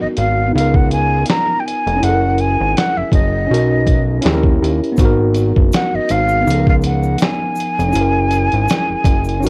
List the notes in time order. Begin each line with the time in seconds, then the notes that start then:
Already playing: B3 D#4 F#4 A#4
0.01 G#1 D#5
0.17 G#1 F5, closed hi-hat
0.48 B3
0.52 C#2 D#4 F5
0.56 F4, closed hi-hat
0.61 A#4
0.74 F#5, kick
0.91 G#5, closed hi-hat
1.26 A#5, snare, closed hi-hat
1.60 G5
1.66 G#5, closed hi-hat
1.87 F1, closed hi-hat
1.96 C#4
2.00 F#1 E4 F#5, closed hi-hat
2.05 G#4
2.09 A4
2.15 A#4
2.38 G#5, closed hi-hat
2.61 G#1
2.77 F#5, snare, closed hi-hat
2.97 F#1 E5
3.12 F#1 D#5, kick, closed hi-hat
3.47 B1 C#4 D#4
3.51 F#4 A#4, closed hi-hat
3.87 kick, closed hi-hat
4.21 D#2 C#4 E4, closed hi-hat
4.26 G4 G#4, snare
4.34 A#4
4.43 kick
4.62 D#2, closed hi-hat
4.84 closed hi-hat
4.92 B3
4.96 G#1 D#4, kick, closed hi-hat, shaker
5.01 F#4
5.05 A#4
5.34 closed hi-hat, shaker
5.56 F#1, kick
5.72 F#5, snare, closed hi-hat, shaker
5.94 G#1 D#5
6.09 G#1 F5, closed hi-hat, shaker
6.29 shaker
6.40 B3
6.45 C#2 D#4, shaker
6.49 F3, closed hi-hat
6.53 A4
6.60 A#4
6.67 F5, kick
6.81 closed hi-hat, shaker
6.86 F#5
7.03 shaker
7.18 G#5, snare, closed hi-hat, shaker
7.55 shaker
7.60 closed hi-hat
7.79 F1, closed hi-hat, shaker
7.89 C#4
7.93 F#1 E4, closed hi-hat, shaker
7.97 G#4
8.01 A#4
8.31 closed hi-hat, shaker
8.52 G#1, closed hi-hat
8.68 snare, closed hi-hat, shaker
8.90 F#1
9.04 F#1, kick, closed hi-hat, shaker
9.24 shaker
9.29 closed hi-hat
9.40 B1 C#4 D#4, shaker
9.44 F#4